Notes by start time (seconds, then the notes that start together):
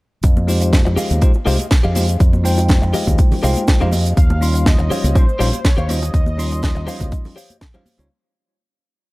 0.23 F2, kick, closed hi-hat, cabasa, shaker
0.37 high conga, cabasa
0.47 G#3 D#4 F4 G4 C5, open hi-hat, high bongo, shaker
0.61 muted clean electric guitar stroke, closed hi-hat, cabasa, shaker
0.72 kick, snare, closed hi-hat, high conga, cabasa, shaker
0.85 F2, muted clean electric guitar stroke, high bongo, cabasa
0.96 G4 G#4 D#5 F5, open hi-hat, low conga, shaker
1.10 D#2, closed hi-hat, high conga, cabasa, shaker
1.21 G#3 D#4 F4 G4 C5, kick, closed hi-hat, cabasa, shaker
1.34 high bongo, cabasa
1.46 C2 G#3 D#4 F4 G4 G#4 C5 D#5 F5, open hi-hat, shaker
1.59 closed hi-hat, high conga, cabasa, shaker
1.71 kick, snare, closed hi-hat, high bongo, cabasa, shaker
1.83 F2 G4 G#4 D#5 F5, cabasa
1.95 G#3 D#4 F4 G4 C5, open hi-hat, high conga, shaker
2.08 closed hi-hat, cabasa, shaker
2.20 F2, kick, closed hi-hat, high bongo, cabasa, shaker
2.33 high conga, cabasa
2.43 G#3 D#4 F4 C5 G5, open hi-hat, shaker
2.57 muted clean electric guitar stroke, closed hi-hat, high bongo, cabasa, shaker
2.68 kick, snare, closed hi-hat, high conga, cabasa, shaker
2.82 F2, muted clean electric guitar stroke, cabasa
2.93 G4 G#4 D#5 F5, open hi-hat, low conga, shaker
3.07 D#2, kick, closed hi-hat, high bongo, high conga, cabasa, shaker
3.18 kick, closed hi-hat, cabasa, shaker
3.31 open hi-hat, low conga, cabasa
3.43 C2 G#3 D#4 F4 G4 G#4 C5 D#5 F5 G5, open hi-hat, high bongo, shaker
3.56 closed hi-hat, high conga, cabasa, shaker
3.67 kick, snare, closed hi-hat, cabasa, shaker
3.80 F2 G#3 D#4 F4 G4 G#4 C5 D#5 F5, low conga, cabasa
3.91 open hi-hat, high bongo, high conga, shaker
4.06 closed hi-hat, cabasa, shaker
4.17 D#2 F5, kick, closed hi-hat, cabasa, shaker
4.30 high bongo, high conga, cabasa
4.41 G3 C#4 D#4 F4 C6, open hi-hat, shaker
4.54 muted clean electric guitar stroke, closed hi-hat, cabasa, shaker
4.66 D#5, kick, snare, closed hi-hat, high conga, cabasa, shaker
4.79 D#2, muted clean electric guitar stroke, high bongo, cabasa
4.90 G4 C5 C#5 F5, open hi-hat, low conga, shaker
5.04 C#2, closed hi-hat, high conga, cabasa, shaker
5.15 G3 C#4 D#4 F4 C5, kick, closed hi-hat, high bongo, cabasa, shaker
5.29 cabasa
5.39 A#1 G3 C#4 D#4 F4 G4 C5 C#5 F5, open hi-hat, shaker
5.53 closed hi-hat, high conga, cabasa, shaker
5.65 C#5, kick, snare, closed hi-hat, high bongo, cabasa, shaker
5.77 D#2 G4 C5 C#5 F5, cabasa
5.89 G3 C#4 D#4 F4 C5 D#5, open hi-hat, high conga, shaker
6.02 closed hi-hat, high bongo, cabasa, shaker
6.14 D#2, kick, closed hi-hat, cabasa, shaker
6.26 high conga, cabasa
6.37 G3 C#4 D#4 F4 C6, open hi-hat, shaker
6.51 muted clean electric guitar stroke, closed hi-hat, high bongo, cabasa, shaker
6.62 kick, snare, closed hi-hat, high conga, cabasa, shaker
6.75 D#2, muted clean electric guitar stroke, cabasa
6.87 G4 C5 C#5 F5, open hi-hat, high bongo, low conga, shaker
7.00 C#2, kick, closed hi-hat, high conga, cabasa, shaker
7.12 kick, closed hi-hat, cabasa, shaker
7.25 open hi-hat, low conga, cabasa
7.36 G4 C5 C#5 F5, open hi-hat, high bongo, shaker
7.50 closed hi-hat, high conga, cabasa, shaker
7.61 kick, snare, closed hi-hat, cabasa, shaker
7.74 G3 C#4 D#4 F4 G4 C5 C#5 F5, high bongo, low conga, cabasa
7.86 open hi-hat, high conga, shaker
7.98 C#2 G3 C#4 D#4 F4 C#5, closed hi-hat, cabasa, shaker